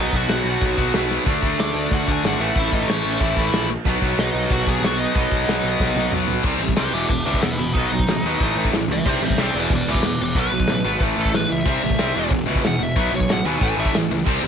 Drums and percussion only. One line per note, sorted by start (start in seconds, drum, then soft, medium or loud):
0.13 kick medium
0.28 snare loud
0.28 crash medium
0.61 kick loud
0.61 crash medium
0.78 kick medium
0.93 snare loud
0.93 crash medium
1.10 snare medium
1.26 kick loud
1.26 crash medium
1.42 kick medium
1.59 snare loud
1.59 crash medium
1.91 kick loud
1.91 crash medium
2.08 kick medium
2.24 snare loud
2.24 crash medium
2.55 kick loud
2.55 crash medium
2.72 kick medium
2.89 snare loud
2.89 crash medium
3.20 kick loud
3.20 crash medium
3.37 kick medium
3.53 snare loud
3.53 crash medium
3.85 kick loud
3.85 crash medium
4.02 kick medium
4.18 snare loud
4.18 crash medium
4.50 kick loud
4.50 crash medium
4.67 kick medium
4.83 snare loud
4.83 crash medium
5.16 kick loud
5.16 crash medium
5.31 kick medium
5.48 snare loud
5.48 crash medium
5.80 kick loud
5.80 snare medium
5.96 high tom medium
6.12 mid tom medium
6.28 floor tom medium
6.43 kick loud
6.43 crash loud
6.68 kick medium
6.76 snare loud
6.76 open hi-hat medium
7.09 kick loud
7.09 open hi-hat medium
7.34 kick medium
7.42 snare loud
7.42 open hi-hat medium
7.75 kick loud
7.75 open hi-hat medium
7.99 kick medium
8.08 snare loud
8.08 open hi-hat medium
8.40 kick loud
8.40 open hi-hat medium
8.65 kick medium
8.72 snare loud
8.72 open hi-hat medium
9.06 kick loud
9.06 crash loud
9.30 kick medium
9.37 snare loud
9.37 open hi-hat medium
9.69 kick loud
9.69 open hi-hat medium
9.94 kick medium
10.02 snare loud
10.02 open hi-hat medium
10.34 kick loud
10.34 open hi-hat medium
10.60 kick loud
10.67 snare loud
10.67 open hi-hat medium
11.00 kick loud
11.00 open hi-hat medium
11.25 kick medium
11.33 snare loud
11.33 open hi-hat medium
11.65 kick loud
11.65 crash loud
11.90 kick medium
11.98 snare loud
11.98 open hi-hat medium
12.29 kick loud
12.29 open hi-hat medium
12.55 kick loud
12.64 snare loud
12.64 open hi-hat medium
12.96 kick loud
12.96 open hi-hat medium
13.20 kick medium
13.29 snare loud
13.29 open hi-hat medium
13.61 kick loud
13.61 open hi-hat medium
13.85 kick medium
13.94 snare loud
13.94 open hi-hat medium
14.26 kick loud
14.26 crash loud